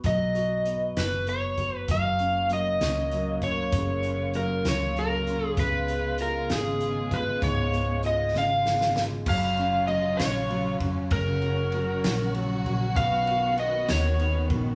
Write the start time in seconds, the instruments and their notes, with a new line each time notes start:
Already playing: grand piano B3 F#4
0.04 fingered electric bass B1, grand piano F#3, electric slide guitar D#5, kick, closed hi-hat
0.35 grand piano F#4, closed hi-hat
0.65 grand piano B3, closed hi-hat
0.97 fingered electric bass F#1, grand piano F#4, electric slide guitar B4, snare, closed hi-hat
1.27 grand piano B3, electric slide guitar C#5, closed hi-hat
1.57 grand piano F#4, kick, closed hi-hat
1.77 electric slide guitar B4
1.88 fingered electric bass F#1, string section C#3 F#3 A#3 F4, grand piano F#3, electric slide guitar F5, kick, closed hi-hat
2.19 grand piano C#4, closed hi-hat
2.49 grand piano F#3, electric slide guitar D#5, closed hi-hat
2.81 fingered electric bass C#2, grand piano C#4, snare, closed hi-hat
3.11 grand piano F#3, closed hi-hat
3.42 grand piano C#4, electric slide guitar C#5, kick, closed hi-hat
3.72 fingered electric bass F#1, grand piano C#3, kick, closed hi-hat
4.03 grand piano C#4, closed hi-hat
4.34 grand piano F#3, electric slide guitar A#4, closed hi-hat
4.65 fingered electric bass C#2, grand piano C#4, electric slide guitar C#5, snare, closed hi-hat
4.96 grand piano F#3, electric slide guitar A#4, closed hi-hat
5.27 grand piano C#4, closed hi-hat
5.47 electric slide guitar G#4
5.57 fingered electric bass C#2, grand piano C#3, string section G#3 B3, electric slide guitar B4, kick, closed hi-hat
5.88 grand piano G#3, closed hi-hat
6.18 grand piano F4, electric slide guitar A#4, closed hi-hat
6.50 fingered electric bass G#1, grand piano C#3, electric slide guitar G#4, snare, closed hi-hat
6.80 grand piano G#3, closed hi-hat
7.11 grand piano F4, electric slide guitar B4, kick, closed hi-hat
7.42 fingered electric bass C#2, grand piano G#2, electric slide guitar C#5, kick, closed hi-hat
7.71 grand piano G#3, closed hi-hat
8.03 grand piano F4, electric slide guitar D#5, closed hi-hat
8.34 fingered electric bass G#1, grand piano C#3, electric slide guitar F5, snare
8.65 grand piano G#3, snare
8.81 snare
8.96 grand piano F4, snare
9.26 fingered electric bass F#1, string section C#3 F#3 C#4 F4, grand piano F#3, electric slide guitar F5, kick, crash
9.57 grand piano C#4, ride
9.87 grand piano F#3, electric slide guitar D#5, ride
10.17 fingered electric bass A#1, grand piano C#4, electric slide guitar C#5, snare, ride
10.50 grand piano F#3, ride
10.80 fingered electric bass F1, grand piano C#4, kick, ride
11.10 fingered electric bass F#1, grand piano C#3, string section F#4, electric slide guitar A#4, kick, ride
11.42 grand piano C#4, ride
11.72 grand piano F#3, ride
12.04 fingered electric bass A#1, grand piano C#4, snare, ride
12.34 grand piano F#3, ride
12.66 fingered electric bass A#1, grand piano C#4, ride
12.95 fingered electric bass B1, string section D#3 B3, grand piano B3, electric slide guitar F5, kick, ride
13.27 grand piano F#4, ride
13.57 grand piano B3, electric slide guitar D#5, ride
13.88 fingered electric bass D#2, grand piano F#4, electric slide guitar C#5, snare, ride
14.19 grand piano B3, ride
14.50 fingered electric bass A#1, grand piano F#4, kick, ride